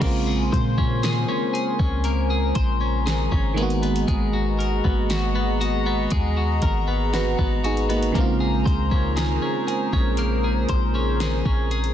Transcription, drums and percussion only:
0.02 kick, closed hi-hat, crash
0.52 kick, closed hi-hat
0.78 kick
1.03 snare, closed hi-hat
1.55 closed hi-hat
1.80 kick
2.04 closed hi-hat
2.55 kick, closed hi-hat
3.07 snare, closed hi-hat
3.32 kick
3.58 closed hi-hat
3.70 closed hi-hat
3.83 closed hi-hat
3.96 closed hi-hat
4.08 kick, closed hi-hat
4.60 closed hi-hat
4.85 kick
5.10 snare, closed hi-hat
5.61 closed hi-hat
6.10 kick, closed hi-hat
6.62 kick, closed hi-hat
7.14 snare, closed hi-hat
7.39 kick
7.64 closed hi-hat
7.77 closed hi-hat
7.90 closed hi-hat
8.03 closed hi-hat
8.15 kick, closed hi-hat
8.66 kick, closed hi-hat
8.92 kick
9.17 snare, closed hi-hat
9.68 closed hi-hat
9.93 kick
10.17 closed hi-hat
10.69 kick, closed hi-hat
11.20 snare, closed hi-hat
11.46 kick
11.71 closed hi-hat
11.84 closed hi-hat

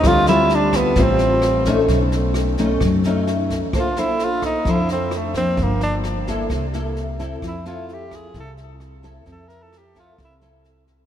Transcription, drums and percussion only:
0.04 kick, cross-stick, snare
0.27 snare
0.49 snare
0.73 kick, cross-stick, snare
0.96 kick, snare
1.19 snare
1.42 cross-stick, snare
1.65 kick, snare
1.88 kick, snare
2.12 snare
2.34 cross-stick, snare
2.58 kick, snare
2.81 kick, cross-stick, snare
3.04 snare
3.27 snare
3.50 kick, snare
3.73 kick, cross-stick, snare
3.96 snare
4.19 snare
4.42 kick, cross-stick, snare
4.65 kick, snare
4.89 snare
5.11 cross-stick, snare
5.34 kick, snare
5.57 kick, snare
5.81 snare
6.04 cross-stick, snare
6.27 kick, snare
6.50 kick, cross-stick, snare
6.73 snare
6.96 snare
7.19 kick, snare
7.42 kick, cross-stick, snare
7.65 snare
7.89 snare
8.11 kick, cross-stick, snare
8.34 kick, snare
8.57 snare
8.80 cross-stick, snare
9.03 kick, snare
9.26 kick, snare
9.50 snare
9.73 cross-stick, snare
9.95 kick, snare
10.18 kick, cross-stick, snare
10.41 snare
10.64 snare
10.87 kick, snare

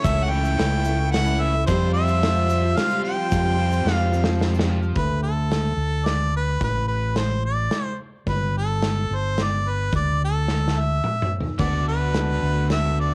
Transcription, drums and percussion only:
0.04 kick, closed hi-hat, shaker
0.19 shaker
0.32 shaker
0.45 shaker
0.59 snare, closed hi-hat
0.72 shaker
0.84 shaker
1.14 snare, closed hi-hat
1.25 shaker
1.67 kick, closed hi-hat, shaker
1.81 shaker
1.95 shaker
2.08 shaker
2.23 snare, closed hi-hat
2.36 shaker
2.50 shaker
2.78 snare, closed hi-hat
2.90 shaker
3.31 kick, closed hi-hat, shaker
3.44 shaker
3.72 shaker
3.87 snare
3.99 shaker
4.14 shaker
4.24 snare
4.40 snare, shaker
4.54 shaker
4.59 snare
4.82 shaker
4.96 kick, closed hi-hat
5.52 snare, closed hi-hat
6.06 snare, closed hi-hat
6.61 kick, closed hi-hat
7.16 snare, closed hi-hat
7.71 snare, closed hi-hat
8.27 kick, closed hi-hat
8.82 snare, closed hi-hat
9.38 snare, closed hi-hat
9.93 kick, closed hi-hat
10.48 snare
10.68 snare
11.04 mid tom
11.22 mid tom
11.41 floor tom
11.59 kick, closed hi-hat
12.14 snare, closed hi-hat
12.70 snare, closed hi-hat

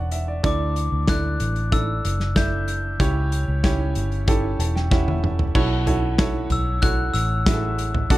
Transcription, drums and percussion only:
0.11 closed hi-hat
0.44 kick, closed hi-hat
0.76 closed hi-hat
1.07 kick, snare, closed hi-hat
1.40 closed hi-hat
1.56 closed hi-hat
1.72 kick, closed hi-hat
2.05 closed hi-hat
2.20 snare
2.36 kick, snare, closed hi-hat
2.68 closed hi-hat
3.00 kick, closed hi-hat
3.32 closed hi-hat
3.64 kick, snare, closed hi-hat
3.95 closed hi-hat
4.12 closed hi-hat
4.28 kick, closed hi-hat
4.60 closed hi-hat
4.76 snare
4.91 kick, snare
5.08 high tom
5.24 mid tom
5.39 floor tom
5.55 kick, crash
5.87 closed hi-hat, floor tom
6.18 kick, snare, closed hi-hat
6.50 closed hi-hat, floor tom
6.82 kick, closed hi-hat
7.15 closed hi-hat
7.46 kick, snare, closed hi-hat
7.78 closed hi-hat
7.95 floor tom
8.10 kick, closed hi-hat

